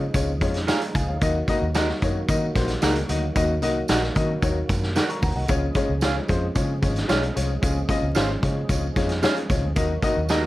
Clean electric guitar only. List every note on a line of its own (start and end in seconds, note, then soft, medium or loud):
0.67 0.80 F4 medium
0.67 0.80 G#4 medium
0.67 0.80 C#5 medium
0.67 0.80 F5 medium
1.75 1.87 D#4 medium
1.75 1.87 F#4 medium
1.75 1.87 A#4 medium
1.75 1.88 F#5 loud
2.82 2.94 D#4 medium
2.82 2.94 F#4 medium
2.82 2.94 A#4 medium
2.82 2.95 F#5 medium
3.89 4.01 D#4 medium
3.89 4.01 F#4 medium
3.89 4.01 A#4 medium
3.89 4.02 F#5 medium
4.96 5.08 D#4 medium
4.96 5.08 F#4 medium
4.96 5.08 A#4 medium
4.96 5.08 F#5 loud
6.02 6.14 F4 medium
6.02 6.15 G#4 medium
6.02 6.15 C#5 medium
6.02 6.15 F5 medium
7.09 7.21 F4 medium
7.09 7.21 G#4 medium
7.09 7.21 C#5 medium
7.09 7.22 F5 medium
8.15 8.28 F4 medium
8.15 8.28 G#4 medium
8.15 8.28 C#5 medium
8.15 8.28 F5 loud
9.23 9.35 F4 medium
9.23 9.35 G#4 medium
9.23 9.35 C#5 medium
9.23 9.35 F5 loud
10.29 10.42 D#4 medium
10.29 10.42 F#4 medium
10.29 10.42 A#4 medium
10.29 10.42 D#5 medium